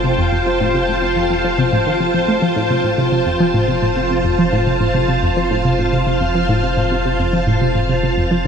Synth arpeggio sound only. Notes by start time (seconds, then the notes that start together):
0.04 C3
0.19 F2
0.33 F2
0.47 F3
0.61 A2
0.74 C3
0.89 A2
1.02 C3
1.16 F2
1.30 F2
1.44 F3
1.58 C3
1.72 A2
1.87 D#3
2.00 F3
2.14 F3
2.28 A3
2.42 F3
2.56 A2
2.70 C3
2.84 A2
2.98 C3
3.12 C3
3.26 F2
3.40 F3
3.54 A2
3.68 C3
3.82 A2
3.96 C3
4.10 C3
4.24 F2
4.39 F3
4.53 A2
4.67 C3
4.81 A2
4.95 C3
5.09 C3
5.23 F2
5.37 F3
5.51 A2
5.65 C3
5.79 A2
5.93 C3
6.07 C3
6.21 F2
6.35 F3
6.49 A2
6.63 C3
6.77 A2
6.91 C3
7.05 C3
7.19 F2
7.33 F3
7.47 A2
7.61 C3
7.75 A2
7.89 C3
8.03 C3
8.17 F2
8.31 F3